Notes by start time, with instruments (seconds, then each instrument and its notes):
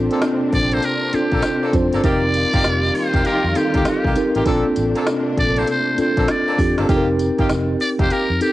Already playing: string section C3 A#3 C4 D4, tine electric piano C4 D4 F4 A4
0.11 horn section A#3 C4 D4 A4, closed hi-hat
0.22 snare, closed hi-hat, tambourine
0.52 fingered electric bass A#1, muted trumpet D5, kick, open hi-hat
0.71 horn section A#3 C4 D4 A4, muted trumpet C5, closed hi-hat
0.82 muted trumpet A#4, closed hi-hat, tambourine
1.13 tine electric piano C4 D4 F4 A4, muted trumpet G4, muted fingered electric bass stroke, closed hi-hat, tambourine
1.32 fingered electric bass A#1, horn section A#3 C4 D4 A4, kick, closed hi-hat
1.43 snare, closed hi-hat, tambourine
1.62 horn section A#3 C4 D4 A4
1.73 fingered electric bass F2, tine electric piano C4 D4 F4 C5, kick, closed hi-hat, tambourine
1.93 fingered electric bass G1, horn section A#3 C4 D4 A4, closed hi-hat
2.04 fingered electric bass F1, string section D#3 G3 F4, horn section A#3 D#4 F4 G4, tine electric piano C4 D#4 G4 A#4, muted trumpet D5, kick, closed hi-hat, tambourine
2.34 closed hi-hat, tambourine
2.53 fingered electric bass G1, horn section A#3 D#4 F4 G4, kick, closed hi-hat
2.64 fingered electric bass F1, snare, closed hi-hat, tambourine
2.95 muted trumpet C5, open hi-hat
3.14 fingered electric bass F1, horn section A#3 D#4 F4 G4, kick, closed hi-hat
3.25 horn section A#3 D#4 F4 G4, muted trumpet A#4, closed hi-hat, tambourine
3.44 fingered electric bass F2
3.55 tine electric piano C4 D#4 G4 A4, muted trumpet G4, closed hi-hat, tambourine
3.74 fingered electric bass D2, horn section A#3 D#4 F4 G4, kick, closed hi-hat
3.85 muted trumpet G4, muted fingered electric bass stroke, snare, closed hi-hat, tambourine
4.05 fingered electric bass C2, horn section A#3 D#4 F4 G4, kick
4.15 tine electric piano C4 D#4 G4 A#4, closed hi-hat, tambourine
4.35 fingered electric bass A1, horn section A#3 D#4 F4 G4, closed hi-hat
4.46 fingered electric bass A#1, string section C3 A3 A#3 D4, horn section A#3 C4 D4 A4, tine electric piano C4 D4 F4 A4, kick, closed hi-hat, tambourine
4.76 fingered electric bass A1, closed hi-hat, tambourine
4.95 horn section A#3 C4 D4 A4, closed hi-hat
5.07 snare, closed hi-hat, tambourine
5.38 fingered electric bass A#1, muted trumpet D5, kick, closed hi-hat
5.56 horn section A#3 C4 D4 A4, muted trumpet C5, closed hi-hat
5.67 muted trumpet C5, closed hi-hat, tambourine
5.98 tine electric piano C4 D4 F4 A4, muted trumpet C5, muted fingered electric bass stroke, closed hi-hat, tambourine
6.17 fingered electric bass A#1, horn section A#3 C4 D4 A4, kick, closed hi-hat
6.28 muted trumpet D5, snare, closed hi-hat, tambourine
6.47 horn section A#3 C4 D4 A4
6.58 fingered electric bass F2, tine electric piano C4 D4 F4 G4, kick, open hi-hat, tambourine
6.77 fingered electric bass G1, horn section A#3 C4 D4 A4, snare, closed hi-hat
6.88 fingered electric bass F1, horn section A#3 D#4 F4 G4, tine electric piano C4 D#4 G4 A4, kick, closed hi-hat, tambourine
6.96 tine electric piano A#4
7.19 closed hi-hat, tambourine
7.38 fingered electric bass G1, horn section A#3 D#4 F4 G4, kick, closed hi-hat
7.49 fingered electric bass F1, snare, closed hi-hat, tambourine
7.80 muted trumpet D5, open hi-hat
7.99 fingered electric bass F1, horn section A#3 D#4 F4 G4, muted trumpet C5, kick, closed hi-hat
8.10 horn section A#3 D#4 F4 G4, muted trumpet A#4, muted fingered electric bass stroke, closed hi-hat, tambourine
8.30 fingered electric bass F2
8.41 tine electric piano C4 D#4 G4 A4, muted trumpet G4, closed hi-hat, tambourine